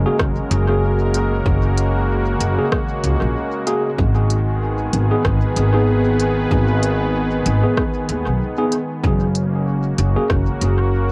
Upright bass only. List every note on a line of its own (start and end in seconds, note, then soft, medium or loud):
0.19 0.35 F#1 medium
0.51 1.43 F#1 loud
1.46 2.38 F#1 loud
2.40 2.56 F#1 medium
3.04 3.19 C#2 medium
3.22 3.34 A#1 medium
3.99 4.91 G#1 loud
4.93 5.09 G#1 medium
5.25 5.40 G#1 medium
5.57 6.49 G#1 loud
6.51 7.43 G#1 loud
7.46 7.62 G#1 medium
8.09 8.25 D#2 medium
8.27 8.39 B1 medium
9.04 9.96 F#1 loud
9.98 10.14 F#1 medium
10.30 10.46 F#1 medium
10.61 11.12 F#1 loud